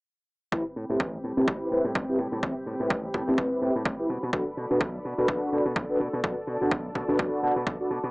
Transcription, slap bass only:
0.52 0.61 A1 medium
0.76 0.85 A2 medium
0.90 0.96 A2 medium
1.00 1.17 A1 medium
1.24 1.33 A2 medium
1.37 1.44 A2 medium
1.48 1.56 A1 medium
1.71 1.80 A2 medium
1.84 1.91 A2 medium
1.95 2.04 A1 medium
2.19 2.28 A2 medium
2.32 2.39 A2 medium
2.43 2.52 A1 medium
2.66 2.75 A2 medium
2.80 2.87 A2 medium
2.90 3.07 A1 medium
3.14 3.23 A2 medium
3.28 3.34 A2 medium
3.38 3.47 A1 medium
3.52 muted slap bass stroke soft
3.62 3.70 A2 medium
3.76 3.82 A2 medium
3.85 3.94 A1 medium
4.09 4.18 B2 medium
4.23 4.30 B2 medium
4.33 4.42 B1 medium
4.57 4.66 B2 medium
4.71 4.77 B2 medium
4.81 4.97 B1 medium
5.05 5.14 B2 medium
5.18 5.25 B2 medium
5.28 5.37 B1 medium
5.52 5.61 B2 medium
5.66 5.72 B2 medium
5.76 5.85 B1 medium
6.00 6.09 B2 medium
6.13 6.20 B2 medium
6.24 6.32 B1 medium
6.47 6.56 B2 medium
6.61 6.68 B2 medium
6.71 6.88 B1 medium
6.95 7.04 B2 medium
7.09 7.15 B2 medium
7.19 7.28 B1 medium
7.43 7.52 B2 medium
7.56 7.63 B2 medium
7.67 7.75 B1 medium
7.90 7.99 B2 medium
8.04 8.10 B2 medium

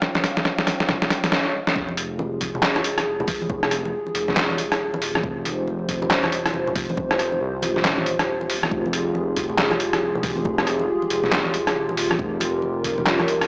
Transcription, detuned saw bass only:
1.76 3.05 F1 loud
3.06 3.92 F1 loud
4.15 4.79 F1 loud
4.80 5.22 D#1 loud
5.24 6.53 F1 medium
6.54 7.40 F1 loud
7.41 7.83 C2 loud
7.85 8.45 D#1 loud
8.45 8.70 D1 loud
8.72 10.01 F1 medium
10.02 10.87 F1 loud
11.11 11.74 F1 loud
11.76 12.18 D#1 loud
12.19 13.47 F1 loud

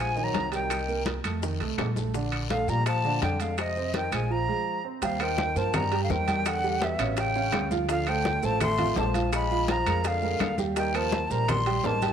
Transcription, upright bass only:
0.00 0.30 A#1 medium
0.34 1.18 C2 medium
1.24 1.58 F2 medium
1.60 1.77 C2 medium
1.78 2.62 A#1 medium
2.68 3.18 A#2 medium
3.22 4.06 F2 medium
4.12 4.45 A#1 medium
5.02 5.52 D#2 medium
5.56 6.06 G2 medium
6.09 6.94 E2 medium
6.99 7.49 A1 medium
7.53 8.37 D2 medium
8.43 8.93 A1 medium
8.96 9.81 A#1 medium
9.86 10.37 F2 medium
10.40 11.24 D#2 medium
11.30 11.80 A#1 medium
11.83 12.13 A1 medium

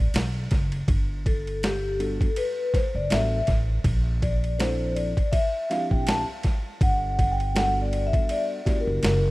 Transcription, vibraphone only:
0.00 0.11 D5 medium
1.27 1.64 A4 medium
1.64 1.97 G4 medium
2.00 2.38 A4 medium
2.37 2.75 B4 medium
2.74 2.94 C5 medium
2.96 3.11 D5 medium
3.11 3.45 E5 medium
4.22 4.56 D5 medium
4.59 4.93 C5 medium
4.95 5.30 D5 medium
5.32 5.67 E5 medium
5.70 5.79 F5 medium
5.91 6.06 G5 medium
6.08 6.24 A5 medium
6.83 7.33 F#5 loud
7.32 7.56 G5 loud
7.56 7.79 F#5 loud
7.82 8.04 D5 medium
8.07 8.23 E5 medium
8.25 8.30 E5 medium
8.31 8.76 D5 medium
8.80 9.31 A#4 medium

